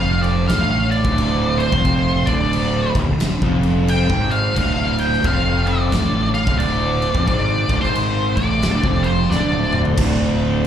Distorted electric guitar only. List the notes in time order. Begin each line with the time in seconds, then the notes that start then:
Already playing: F2
0.50 A2
1.04 D2
1.72 F2
2.28 D2
2.95 D#2
3.08 D2
3.42 F2
4.10 G#2
4.57 D2
5.25 F2
5.93 A2
6.47 D2
7.15 F2
7.27 G#2
7.69 D2
7.82 G#2
8.37 A2
8.63 D2
8.84 F2
9.31 D2
9.99 D2